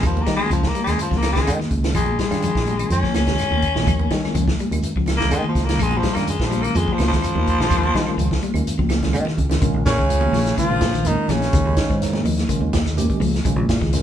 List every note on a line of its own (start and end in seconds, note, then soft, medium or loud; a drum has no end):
0.03 0.22 D#2 loud
0.03 0.23 F3 medium
0.03 0.24 F3 medium
0.03 kick loud
0.03 closed hi-hat medium
0.03 low conga medium
0.03 claves medium
0.03 shekere medium
0.17 high conga medium
0.22 0.36 A#3 medium
0.26 0.37 D#3 loud
0.26 0.47 G3 medium
0.26 kick medium
0.26 snare medium
0.26 closed hi-hat medium
0.26 shekere soft
0.36 0.51 G#3 loud
0.36 high conga medium
0.36 claves medium
0.41 0.60 D#3 medium
0.41 0.60 G#3 medium
0.41 0.60 C#4 medium
0.41 0.60 F4 medium
0.50 0.69 C#2 loud
0.50 0.71 F3 medium
0.50 0.70 F3 medium
0.50 closed hi-hat medium
0.50 shekere medium
0.63 kick medium
0.63 snare medium
0.68 0.83 A#3 medium
0.75 0.95 G3 medium
0.75 closed hi-hat medium
0.75 high conga medium
0.75 shekere soft
0.84 0.96 D#2 medium
0.84 0.99 G#3 loud
0.84 snare soft
0.84 closed hi-hat medium
0.84 claves medium
0.88 1.08 D#3 medium
0.88 1.08 G#3 medium
0.88 1.08 C#4 medium
0.88 1.08 F4 medium
0.99 1.19 F3 medium
0.99 closed hi-hat medium
0.99 shekere medium
1.11 1.49 C#2 medium
1.11 1.32 F3 medium
1.11 kick medium
1.11 snare soft
1.11 high conga medium
1.17 1.32 A#3 loud
1.22 snare medium
1.22 closed hi-hat medium
1.22 high conga medium
1.22 claves medium
1.22 shekere soft
1.32 1.56 D#3 medium
1.32 1.55 G#3 loud
1.32 1.56 G#3 medium
1.32 1.56 C#4 medium
1.32 kick medium
1.32 snare medium
1.32 closed hi-hat soft
1.32 low conga medium
1.36 1.56 F4 medium
1.47 1.57 D#3 medium
1.47 closed hi-hat medium
1.47 claves medium
1.47 shekere loud
1.59 1.80 D#3 medium
1.59 snare soft
1.59 high conga medium
1.71 1.95 C#2 medium
1.71 kick medium
1.71 closed hi-hat soft
1.71 shekere soft
1.82 1.95 D#3 medium
1.82 1.95 G#3 medium
1.82 1.95 C#4 medium
1.82 1.95 F4 medium
1.82 snare medium
1.82 closed hi-hat medium
1.82 low conga medium
1.94 2.23 A#1 medium
1.94 2.15 F3 medium
1.94 2.19 G#3 loud
1.94 kick loud
1.94 closed hi-hat medium
1.94 low conga medium
1.94 claves medium
1.94 shekere medium
2.06 high conga loud
2.19 2.39 G3 medium
2.19 2.90 G#3 loud
2.19 kick medium
2.19 snare medium
2.19 closed hi-hat medium
2.19 shekere soft
2.31 2.50 G2 loud
2.31 2.51 D#3 medium
2.31 2.51 G#3 medium
2.31 2.51 C#4 medium
2.31 2.51 F4 medium
2.31 snare soft
2.31 closed hi-hat medium
2.31 claves medium
2.42 2.64 F3 medium
2.42 closed hi-hat medium
2.42 shekere medium
2.55 2.83 A#1 medium
2.55 kick medium
2.55 snare medium
2.66 2.88 G3 medium
2.66 closed hi-hat soft
2.66 high conga medium
2.66 shekere soft
2.79 2.99 D#3 medium
2.79 2.99 G#3 medium
2.79 2.99 C#4 medium
2.79 2.99 F4 medium
2.79 closed hi-hat medium
2.79 claves medium
2.90 3.00 F2 loud
2.90 3.15 C#4 medium
2.90 closed hi-hat medium
2.90 shekere medium
3.03 3.24 F3 medium
3.03 kick medium
3.03 snare soft
3.03 high conga medium
3.14 3.33 C#2 medium
3.14 4.55 C#4 loud
3.14 snare medium
3.14 closed hi-hat soft
3.14 high conga loud
3.14 claves medium
3.14 shekere soft
3.27 3.47 D#3 medium
3.27 3.47 G#3 medium
3.27 3.47 C#4 medium
3.27 3.47 G4 medium
3.27 kick medium
3.27 snare medium
3.27 closed hi-hat soft
3.27 low conga medium
3.38 snare soft
3.38 closed hi-hat medium
3.38 claves medium
3.38 shekere medium
3.51 3.70 D#2 medium
3.51 3.72 D#3 medium
3.51 high conga medium
3.62 kick medium
3.62 closed hi-hat soft
3.62 shekere soft
3.75 3.84 A#1 medium
3.75 3.87 D#3 medium
3.75 3.87 G#3 medium
3.75 3.87 C#4 medium
3.75 3.87 F4 loud
3.75 snare medium
3.75 high conga medium
3.75 low conga medium
3.87 4.05 D#2 medium
3.87 4.07 F3 medium
3.87 kick loud
3.87 closed hi-hat medium
3.87 low conga medium
3.87 claves medium
3.87 shekere loud
3.99 high conga medium
4.10 4.21 D#3 medium
4.10 4.31 G3 medium
4.10 kick medium
4.10 snare medium
4.10 closed hi-hat medium
4.10 shekere soft
4.24 4.43 D#3 loud
4.24 4.43 G#3 medium
4.24 4.43 C#4 medium
4.24 4.44 F4 loud
4.24 snare soft
4.24 high conga medium
4.24 claves medium
4.34 4.53 C#2 loud
4.34 4.55 F3 medium
4.34 closed hi-hat medium
4.34 shekere medium
4.48 kick medium
4.48 snare medium
4.59 4.80 G3 medium
4.59 closed hi-hat soft
4.59 high conga medium
4.59 shekere soft
4.71 4.80 D#2 medium
4.71 4.91 D#3 medium
4.71 4.91 G#3 medium
4.71 4.91 C#4 medium
4.71 4.91 F4 medium
4.71 closed hi-hat medium
4.71 claves medium
4.82 closed hi-hat medium
4.82 shekere medium
4.96 5.33 C#2 medium
4.96 5.16 F3 medium
4.96 kick medium
5.06 snare medium
5.06 closed hi-hat medium
5.06 high conga medium
5.06 claves medium
5.06 shekere soft
5.17 5.39 D#3 medium
5.17 5.40 G#3 medium
5.17 5.34 A#3 loud
5.17 5.39 C#4 medium
5.17 5.39 F4 medium
5.17 kick medium
5.17 snare medium
5.17 closed hi-hat medium
5.17 low conga medium
5.30 5.41 D#3 loud
5.30 5.47 G#3 loud
5.30 closed hi-hat medium
5.30 claves medium
5.30 shekere medium
5.42 5.64 D#3 medium
5.42 high conga medium
5.49 5.67 F3 medium
5.55 5.79 C#2 medium
5.55 kick medium
5.55 snare soft
5.55 closed hi-hat medium
5.55 shekere soft
5.65 5.80 D#3 medium
5.65 5.83 A#3 loud
5.65 5.80 F4 medium
5.65 closed hi-hat medium
5.65 high conga medium
5.65 low conga medium
5.69 5.80 G#3 medium
5.69 5.80 C#4 medium
5.69 snare medium
5.78 6.07 A#1 loud
5.78 5.99 F3 medium
5.78 5.99 G#3 medium
5.78 kick loud
5.78 closed hi-hat medium
5.78 low conga medium
5.78 claves medium
5.78 shekere medium
5.91 high conga loud
5.98 6.16 F3 medium
6.03 6.23 G3 medium
6.03 kick medium
6.03 snare medium
6.03 closed hi-hat soft
6.03 shekere soft
6.14 6.34 G2 medium
6.14 6.36 D#3 medium
6.14 6.36 G#3 medium
6.14 6.28 A#3 medium
6.14 6.36 C#4 medium
6.14 6.36 F4 medium
6.14 snare soft
6.14 closed hi-hat medium
6.14 claves medium
6.27 6.47 G#3 medium
6.27 closed hi-hat medium
6.27 shekere medium
6.40 6.67 A#1 medium
6.40 kick medium
6.40 snare medium
6.45 6.64 F3 loud
6.50 6.71 G3 medium
6.50 closed hi-hat medium
6.50 high conga medium
6.50 shekere soft
6.62 6.83 D#3 medium
6.62 6.83 G#3 medium
6.62 6.78 A#3 loud
6.62 6.83 C#4 medium
6.62 6.83 F4 medium
6.62 closed hi-hat medium
6.62 claves medium
6.75 6.85 F2 loud
6.75 6.95 G#3 medium
6.75 closed hi-hat medium
6.75 shekere medium
6.87 7.08 F3 medium
6.87 kick medium
6.87 high conga medium
6.93 7.07 F3 loud
6.98 7.17 C#2 medium
6.98 snare medium
6.98 closed hi-hat medium
6.98 high conga loud
6.98 claves medium
6.98 shekere soft
7.08 7.31 D#3 medium
7.08 8.47 F3 loud
7.08 7.31 F4 medium
7.08 kick medium
7.12 7.31 G#3 medium
7.12 7.31 C#4 medium
7.12 snare medium
7.12 closed hi-hat soft
7.12 low conga medium
7.22 closed hi-hat medium
7.22 claves medium
7.22 shekere medium
7.35 7.54 D#2 loud
7.35 7.55 D#3 medium
7.35 high conga medium
7.47 kick medium
7.47 closed hi-hat soft
7.47 shekere soft
7.58 7.67 A#1 loud
7.58 7.71 D#3 medium
7.58 7.71 G#3 medium
7.58 7.71 C#4 medium
7.58 7.71 F4 medium
7.58 snare medium
7.58 low conga medium
7.70 7.89 D#2 loud
7.70 7.91 F3 medium
7.70 kick loud
7.70 snare soft
7.70 closed hi-hat medium
7.70 low conga medium
7.70 claves medium
7.70 shekere loud
7.83 high conga loud
7.94 8.04 D#3 loud
7.94 8.14 G3 medium
7.94 kick medium
7.94 snare medium
7.94 closed hi-hat soft
7.94 shekere soft
8.07 8.27 D#3 loud
8.07 8.27 G#3 medium
8.07 8.27 C#4 medium
8.07 8.27 F4 loud
8.07 high conga medium
8.07 claves medium
8.17 8.36 C#2 medium
8.17 8.38 F3 medium
8.17 closed hi-hat medium
8.17 shekere loud
8.31 kick medium
8.31 snare medium
8.42 8.63 G3 medium
8.42 closed hi-hat soft
8.42 high conga medium
8.42 shekere soft
8.54 8.63 D#2 medium
8.54 8.74 D#3 medium
8.54 8.74 G#3 medium
8.54 8.74 C#4 medium
8.54 8.74 F4 medium
8.54 closed hi-hat medium
8.54 claves medium
8.67 closed hi-hat medium
8.67 shekere medium
8.78 9.15 C#2 medium
8.78 8.99 F3 medium
8.78 kick medium
8.78 high conga medium
8.89 snare medium
8.89 closed hi-hat medium
8.89 high conga loud
8.89 claves medium
8.89 shekere soft
9.03 9.22 D#3 medium
9.03 9.22 G#3 medium
9.03 9.22 C#4 medium
9.03 9.22 F4 loud
9.03 kick medium
9.03 snare medium
9.03 closed hi-hat soft
9.03 low conga medium
9.13 9.23 D#3 medium
9.13 closed hi-hat medium
9.13 high conga medium
9.13 claves medium
9.13 shekere loud
9.25 9.47 D#3 medium
9.25 snare soft
9.25 low conga medium
9.37 9.57 C#2 medium
9.37 kick medium
9.37 closed hi-hat medium
9.37 low conga medium
9.37 shekere soft
9.49 9.60 D#3 medium
9.49 9.60 G#3 medium
9.49 9.60 C#4 medium
9.49 9.60 F4 loud
9.49 snare medium
9.49 closed hi-hat medium
9.49 low conga medium
9.61 9.72 A#1 medium
9.61 9.82 C#3 medium
9.61 9.82 D#3 loud
9.61 9.82 G#3 medium
9.61 9.82 C#4 medium
9.61 9.81 F4 medium
9.61 kick loud
9.61 closed hi-hat medium
9.61 shekere medium
9.74 9.83 A#1 medium
9.85 9.96 A#2 medium
9.85 10.54 C#3 medium
9.85 10.53 C#4 loud
9.85 kick medium
9.85 snare medium
9.85 closed hi-hat medium
9.85 shekere loud
9.98 10.26 C#2 medium
9.98 10.19 D#3 medium
9.98 kick medium
9.98 shekere soft
10.09 10.29 D#3 medium
10.09 10.29 G#3 medium
10.09 10.29 C#4 medium
10.09 10.29 F4 medium
10.09 closed hi-hat medium
10.09 shekere medium
10.21 high conga loud
10.32 10.52 A#1 medium
10.32 10.54 F3 medium
10.32 snare soft
10.32 open hi-hat medium
10.32 high conga medium
10.32 low conga medium
10.32 shekere soft
10.46 snare soft
10.46 closed hi-hat soft
10.46 shekere medium
10.58 10.78 C#3 medium
10.58 10.78 D#3 medium
10.58 11.07 F3 medium
10.58 10.78 G#3 medium
10.58 10.78 C#4 medium
10.58 10.78 F4 medium
10.58 11.08 F4 loud
10.58 kick medium
10.58 closed hi-hat medium
10.58 shekere medium
10.70 11.15 A#1 medium
10.81 kick medium
10.81 snare medium
10.81 closed hi-hat medium
10.81 high conga loud
10.81 shekere loud
10.94 11.14 D#3 medium
10.94 closed hi-hat soft
10.94 shekere medium
11.04 11.25 D#3 medium
11.04 11.32 D#3 medium
11.04 11.26 G#3 medium
11.04 11.26 C#4 medium
11.04 11.33 D#4 loud
11.04 11.26 F4 loud
11.04 closed hi-hat medium
11.04 high conga medium
11.04 low conga medium
11.04 shekere loud
11.28 11.47 A#1 medium
11.28 12.25 C#3 medium
11.28 11.50 F3 medium
11.28 12.26 C#4 medium
11.28 snare soft
11.28 closed hi-hat soft
11.28 high conga medium
11.28 low conga medium
11.28 shekere soft
11.40 snare soft
11.40 closed hi-hat soft
11.40 high conga medium
11.40 shekere soft
11.53 11.63 D#2 loud
11.53 11.74 C#3 medium
11.53 11.73 D#3 medium
11.53 11.73 G#3 medium
11.53 11.73 C#4 medium
11.53 11.73 F4 medium
11.53 kick loud
11.53 closed hi-hat medium
11.53 shekere medium
11.65 11.74 D#2 medium
11.77 11.87 D#3 loud
11.77 kick medium
11.77 snare medium
11.77 closed hi-hat medium
11.77 shekere loud
11.90 12.17 G#2 medium
11.90 12.10 D#3 medium
11.90 kick medium
11.90 shekere soft
12.02 12.21 D#3 loud
12.02 12.22 G#3 medium
12.02 12.22 C#4 medium
12.02 12.21 D#4 loud
12.02 snare soft
12.02 closed hi-hat medium
12.02 shekere loud
12.13 snare soft
12.13 high conga loud
12.24 12.43 D#2 medium
12.24 12.45 F3 medium
12.24 open hi-hat medium
12.24 high conga medium
12.24 low conga medium
12.24 shekere soft
12.37 snare soft
12.37 closed hi-hat soft
12.37 shekere medium
12.49 12.69 C#3 medium
12.49 12.69 D#3 loud
12.49 12.69 G#3 medium
12.49 12.69 C#4 loud
12.49 12.69 F4 loud
12.49 kick medium
12.49 closed hi-hat medium
12.49 shekere medium
12.61 13.06 D#2 medium
12.73 kick medium
12.73 snare medium
12.73 closed hi-hat medium
12.73 high conga loud
12.73 shekere loud
12.86 13.06 D#3 medium
12.86 snare soft
12.86 closed hi-hat soft
12.86 shekere medium
12.97 13.17 D#3 loud
12.97 13.17 G#3 loud
12.97 13.17 C#4 medium
12.97 13.17 G4 loud
12.97 closed hi-hat medium
12.97 high conga medium
12.97 low conga medium
12.97 shekere medium
13.10 kick medium
13.10 closed hi-hat soft
13.20 13.39 C#2 loud
13.20 13.41 F3 medium
13.20 open hi-hat medium
13.20 high conga medium
13.20 low conga medium
13.20 shekere soft
13.34 snare soft
13.34 shekere soft
13.45 13.55 A#1 medium
13.45 13.65 C#3 medium
13.45 13.65 D#3 loud
13.45 13.65 G#3 medium
13.45 13.65 C#4 medium
13.45 13.65 F4 loud
13.45 kick loud
13.45 closed hi-hat medium
13.45 shekere medium
13.56 13.65 A#1 loud
13.56 high conga medium
13.69 13.79 A#2 loud
13.69 kick medium
13.69 snare medium
13.69 closed hi-hat medium
13.69 low conga medium
13.69 shekere loud
13.81 14.02 C#2 medium
13.81 14.01 D#3 medium
13.81 kick medium
13.81 snare soft
13.81 shekere soft
13.93 14.02 D#3 loud
13.93 14.02 G#3 medium
13.93 14.02 C#4 loud
13.93 14.02 F4 loud
13.93 closed hi-hat medium
13.93 shekere loud